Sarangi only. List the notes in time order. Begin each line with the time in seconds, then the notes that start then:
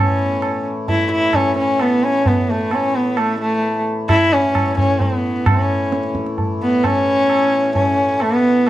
Already playing: C#4
0.89 E4
1.12 E4
1.35 C#4
1.58 C#4
1.81 B3
2.04 C#4
2.27 B3
2.50 A3
2.73 C#4
2.95 B3
3.18 A3
3.41 A3
4.10 E4
4.32 C#4
4.78 C#4
5.01 C4
5.16 B3
5.47 C4
5.62 C#4
6.63 B3
6.85 C#4
7.76 C#4
8.22 B3